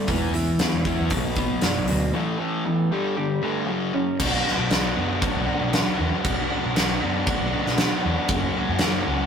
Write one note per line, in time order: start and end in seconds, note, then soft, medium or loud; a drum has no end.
0.07 0.62 E1 loud
0.07 0.33 E3 medium
0.07 0.33 B3 medium
0.07 0.33 E4 medium
0.07 kick loud
0.07 open hi-hat medium
0.34 0.57 E3 medium
0.34 0.58 B3 medium
0.34 0.85 E4 medium
0.34 open hi-hat medium
0.59 0.83 E3 medium
0.59 0.83 B3 medium
0.59 snare loud
0.59 open hi-hat medium
0.73 0.94 E1 medium
0.85 1.10 E3 medium
0.85 1.10 B3 medium
0.85 1.10 E4 medium
0.85 kick medium
0.85 open hi-hat medium
0.99 1.09 E2 medium
1.10 1.54 B1 loud
1.10 1.36 B2 medium
1.10 1.36 F#3 medium
1.10 1.36 B3 loud
1.10 kick medium
1.10 open hi-hat medium
1.36 1.61 B2 medium
1.36 1.61 F#3 loud
1.36 1.62 B3 loud
1.36 kick medium
1.36 open hi-hat soft
1.62 1.78 F#2 loud
1.62 1.86 B2 medium
1.62 1.86 F#3 medium
1.62 2.16 D4 medium
1.62 snare medium
1.62 open hi-hat medium
1.76 1.87 B1 medium
1.88 2.10 D2 medium
1.88 2.12 B2 medium
1.88 2.12 F#3 medium
1.88 2.15 F#4 medium
1.88 open hi-hat medium
2.13 2.37 A2 medium
2.13 2.37 E3 medium
2.13 2.37 A3 loud
2.38 2.64 A2 medium
2.38 2.64 E3 medium
2.38 2.64 A3 medium
2.38 2.92 E4 medium
2.65 2.89 A2 medium
2.65 2.89 E3 medium
2.65 2.92 B3 medium
2.92 3.16 G2 medium
2.92 3.16 D3 loud
2.92 3.17 G3 medium
3.17 3.41 G2 medium
3.17 3.41 D3 medium
3.17 3.69 G4 medium
3.42 3.67 G2 loud
3.42 3.67 D3 loud
3.42 3.67 G3 loud
3.42 3.69 A3 medium
3.67 3.92 F#2 medium
3.67 3.92 C#3 medium
3.67 3.93 F#3 medium
3.94 4.17 F#2 medium
3.94 4.18 C#3 medium
3.94 4.20 C#4 medium
4.20 4.41 B1 medium
4.20 4.97 B2 medium
4.20 4.70 F#3 medium
4.20 4.46 B3 medium
4.20 4.45 D4 medium
4.20 4.44 F#4 loud
4.20 kick loud
4.20 crash loud
4.20 crash medium
4.45 4.71 B3 medium
4.45 4.72 D4 medium
4.45 4.72 F#4 medium
4.45 snare soft
4.57 4.69 B2 medium
4.71 4.92 B1 medium
4.71 4.97 F#3 medium
4.71 4.96 B3 medium
4.71 4.95 D4 medium
4.71 4.95 F#4 medium
4.71 snare loud
4.71 crash medium
4.96 5.18 F#2 medium
4.96 5.48 B2 medium
4.96 5.21 F#3 medium
4.96 5.21 B3 medium
4.96 5.22 D4 medium
4.96 5.23 F#4 medium
5.21 5.49 F#3 medium
5.21 5.47 B3 medium
5.21 5.47 D4 medium
5.21 5.47 F#4 medium
5.21 kick loud
5.21 crash medium
5.36 5.46 B1 medium
5.47 6.00 B2 medium
5.47 5.72 F#3 medium
5.47 5.72 B3 medium
5.47 5.72 D4 medium
5.47 5.74 F#4 medium
5.61 5.82 B2 medium
5.73 6.25 F#3 medium
5.73 5.99 B3 medium
5.73 5.98 D4 medium
5.73 5.98 F#4 medium
5.73 snare loud
5.73 crash medium
5.98 6.10 E2 medium
5.98 6.24 B3 medium
5.98 6.24 D4 medium
5.98 6.26 F#4 medium
6.24 6.46 B1 medium
6.24 6.76 B2 medium
6.24 6.75 F#3 medium
6.24 6.51 B3 medium
6.24 6.50 D4 medium
6.24 6.49 F#4 loud
6.24 kick loud
6.24 crash medium
6.50 6.74 B3 medium
6.50 6.75 D4 medium
6.50 6.77 F#4 medium
6.63 6.74 B2 loud
6.75 6.98 B1 medium
6.75 7.03 F#3 medium
6.75 7.02 B3 medium
6.75 7.02 D4 medium
6.75 7.01 F#4 medium
6.75 snare loud
6.75 crash medium
7.02 7.24 F#2 medium
7.02 7.53 B2 medium
7.02 7.27 F#3 medium
7.02 7.28 B3 medium
7.02 7.28 D4 medium
7.02 7.29 F#4 medium
7.27 7.54 F#3 medium
7.27 7.53 B3 medium
7.27 7.52 D4 medium
7.27 7.52 F#4 medium
7.27 kick loud
7.27 crash medium
7.42 7.52 B1 medium
7.52 8.05 B2 medium
7.52 7.78 F#3 medium
7.52 7.78 B3 medium
7.52 7.79 D4 medium
7.52 7.80 F#4 loud
7.66 7.88 B2 medium
7.66 snare soft
7.78 8.29 F#3 medium
7.78 8.05 B3 medium
7.78 8.04 D4 medium
7.78 8.03 F#4 medium
7.78 snare loud
7.78 crash medium
8.04 8.15 E2 loud
8.04 8.29 B3 medium
8.04 8.29 D4 medium
8.04 8.31 F#4 medium
8.28 8.50 F#1 medium
8.28 8.82 F#3 medium
8.28 8.57 A#3 medium
8.28 8.57 C#4 medium
8.28 8.57 F#4 loud
8.28 kick loud
8.28 crash medium
8.57 8.81 A#3 medium
8.57 8.82 C#4 medium
8.57 8.84 F#4 medium
8.68 8.79 F#2 loud
8.79 9.02 F#1 medium
8.79 9.08 F#3 medium
8.79 snare loud
8.79 crash medium
8.83 9.07 A#3 medium
8.83 9.06 C#4 medium
8.83 9.06 F#4 medium
9.06 9.26 C#2 medium
9.06 9.26 F#3 medium
9.06 9.26 A#3 medium
9.06 9.26 C#4 medium
9.06 9.26 F#4 loud